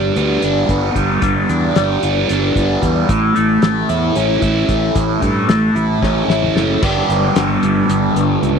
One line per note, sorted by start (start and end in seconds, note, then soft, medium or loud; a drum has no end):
0.00 0.95 G3 medium
0.00 0.42 D4 medium
0.16 0.36 D2 medium
0.16 0.69 B3 medium
0.16 closed hi-hat medium
0.42 0.63 G1 medium
0.42 1.48 D4 medium
0.42 closed hi-hat medium
0.69 0.89 G1 medium
0.69 2.02 B3 medium
0.69 kick medium
0.69 closed hi-hat medium
0.95 1.16 G1 medium
0.95 1.22 G3 medium
0.95 kick medium
0.95 closed hi-hat medium
1.22 1.43 G1 medium
1.22 1.75 G3 medium
1.22 kick loud
1.22 closed hi-hat medium
1.49 1.70 E2 medium
1.49 2.28 D4 medium
1.49 closed hi-hat medium
1.76 1.96 G1 medium
1.76 2.81 G3 medium
1.76 snare loud
1.76 closed hi-hat medium
2.03 2.23 G1 medium
2.03 2.55 B3 medium
2.03 closed hi-hat medium
2.29 2.50 G1 medium
2.29 3.09 D4 medium
2.29 closed hi-hat medium
2.56 2.76 G1 medium
2.56 3.09 B3 medium
2.56 kick medium
2.56 closed hi-hat medium
2.82 3.02 E2 medium
2.82 3.09 G3 medium
2.82 kick medium
2.82 closed hi-hat medium
3.09 3.29 A1 medium
3.09 4.43 A2 medium
3.09 kick loud
3.09 closed hi-hat medium
3.35 3.57 A1 medium
3.35 3.61 A3 medium
3.35 closed hi-hat medium
3.62 3.83 A1 medium
3.62 4.67 A3 medium
3.62 snare loud
3.62 closed hi-hat medium
3.89 4.09 E2 medium
3.89 4.41 E4 medium
3.89 closed hi-hat medium
4.15 4.36 A1 medium
4.15 5.49 C#4 medium
4.15 closed hi-hat medium
4.42 4.62 A1 medium
4.42 5.74 E4 medium
4.42 kick medium
4.42 closed hi-hat medium
4.69 4.89 A1 medium
4.69 5.21 A3 medium
4.69 kick medium
4.69 closed hi-hat medium
4.95 5.16 A1 medium
4.95 6.29 A2 medium
4.95 kick loud
4.95 closed hi-hat medium
5.22 5.42 G2 medium
5.22 5.48 A3 medium
5.22 kick medium
5.22 closed hi-hat medium
5.48 5.69 A1 medium
5.48 6.54 A3 medium
5.48 snare loud
5.48 closed hi-hat medium
5.75 5.96 A1 medium
5.75 6.28 E4 medium
5.75 closed hi-hat medium
6.02 6.22 A1 medium
6.02 6.82 C#4 medium
6.02 kick loud
6.02 snare medium
6.28 6.48 A1 medium
6.28 6.83 E4 medium
6.28 snare medium
6.43 mid tom medium
6.55 6.76 F#1 medium
6.55 6.82 A3 medium
6.55 snare medium
6.82 7.01 G1 medium
6.82 8.59 G2 medium
6.82 8.59 D3 medium
6.82 8.59 G3 medium
6.82 8.59 B3 medium
6.82 8.59 D4 medium
6.82 8.59 G4 medium
6.82 kick loud
6.82 crash loud
7.09 7.28 G1 medium
7.09 closed hi-hat medium
7.36 7.55 G1 medium
7.36 snare loud
7.36 closed hi-hat medium
7.63 7.82 G1 medium
7.63 closed hi-hat medium
7.89 8.08 G1 medium
7.89 closed hi-hat medium
8.16 8.35 G1 medium
8.16 closed hi-hat medium
8.42 8.59 C#2 medium
8.42 closed hi-hat medium